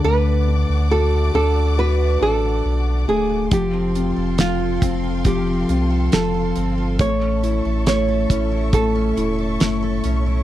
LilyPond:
<<
  \new Staff \with { instrumentName = "String section" } { \time 4/4 \key d \lydian \tempo 4 = 69 << { <d'' fis'' d'''>1 | <f'' g'' c'''>1 | <cis'' e'' cis'''>1 | } \\ { a1 | a'1~ | a'1 | } >> }
  \new Staff \with { instrumentName = "Nylon-string guitar" } { \time 4/4 \key d \lydian b'4 a'8 a'8 b'8 a'4 gis'8 | g'4 f'4 g'4 a'4 | cis''4 cis''4 a'4. r8 | }
  \new Staff \with { instrumentName = "Steel-string acoustic guitar" } { \time 4/4 \key d \lydian r1 | f16 c'16 f'16 a'16 f'16 a'16 c'16 f'16 f16 c'16 f'16 a'16 f'16 a'16 c'16 f'16 | a,16 cis'16 e'16 a'16 e'16 a'16 cis'16 e'16 a,16 cis'16 e'16 a'16 e'16 a'16 cis'16 e'16 | }
  \new Staff \with { instrumentName = "Felt piano" } { \time 4/4 \key d \lydian <d a>8 d'8 fis'8 d'8 fis'8 d'4 a8 | f8 c'8 f8 c'8 f8 c'8 f4 | a8 e'8 a8 e'8 a8 e'8 a4 | }
  \new Staff \with { instrumentName = "Sub bass" } { \clef bass \time 4/4 \key d \lydian d,8. d,8. d,4 a,,8 b,,8 d,,8 | f,,8. f,,8. f,,4 c,8 f,,8 g,,8 | a,,8. a,,8. a,,4 e,,8 fis,,8 b,,8 | }
  \new DrumStaff \with { instrumentName = "Drums" } \drummode { \time 4/4 r4 r4 r4 r4 | <hh bd>8 hh8 <hh sn>8 <hh bd>8 <hh bd>8 hh8 <hh sn>8 hh8 | <hh bd>8 hh8 <hh sn>8 <hh bd>8 <hh bd>8 hh8 <hh sn>8 hh8 | }
>>